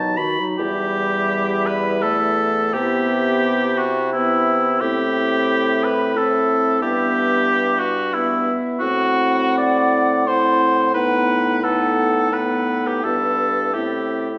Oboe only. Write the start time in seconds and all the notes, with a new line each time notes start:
Already playing: A5
0.17 B5
0.58 G4
1.66 B4
2.02 A4
2.74 G4
3.79 F#4
4.13 E4
4.81 G4
5.84 B4
6.17 A4
6.82 G4
7.79 F#4
8.13 E4
8.80 F#4
9.57 D5
10.27 C5
10.94 B4
11.64 A4
12.33 B4
12.87 G4
13.04 A4
13.74 G4